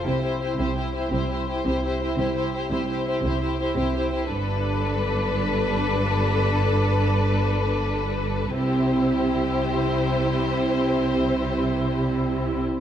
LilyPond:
<<
  \new Staff \with { instrumentName = "Violin section" } { \time 12/8 \key c \mixolydian \tempo 4. = 113 c''8 c''8 c''8 c''8 c''8 c''8 c''8 c''8 c''8 c''8 c''8 c''8 | c''8 c''8 c''8 c''8 c''8 c''8 c''8 c''8 c''8 c''8 c''8 c''8 | b'1.~ | b'1. |
c''1.~ | c''1~ c''4. r8 | }
  \new Staff \with { instrumentName = "Violin section" } { \time 12/8 \key c \mixolydian g'8 g'8 g'8 g'8 g'8 g'8 g'8 g'8 g'8 g'8 g'8 g'8 | g'8 g'8 g'8 g'8 g'8 g'8 g'8 g'8 g'8 g'8 g'8 g'8 | a'1.~ | a'1. |
g'1.~ | g'1~ g'4. r8 | }
  \new Staff \with { instrumentName = "Viola section" } { \time 12/8 \key c \mixolydian e'8 e'8 e'8 e'8 e'8 e'8 e'8 e'8 e'8 e'8 e'8 e'8 | e'8 e'8 e'8 e'8 e'8 e'8 e'8 e'8 e'8 e'8 e'8 e'8 | d'1.~ | d'1. |
e'1.~ | e'1~ e'4. r8 | }
  \new Staff \with { instrumentName = "Cello section" } { \clef bass \time 12/8 \key c \mixolydian c4. c4. c4. c4. | c4. c4. c4. c4. | g,1.~ | g,1. |
c1.~ | c1~ c4. r8 | }
  \new Staff \with { instrumentName = "Double bass section" } { \clef bass \time 12/8 \key c \mixolydian c,4. c,4. c,4. c,4. | c,4. c,4. c,4. c,4. | g,,1.~ | g,,1. |
c,1.~ | c,1~ c,4. r8 | }
>>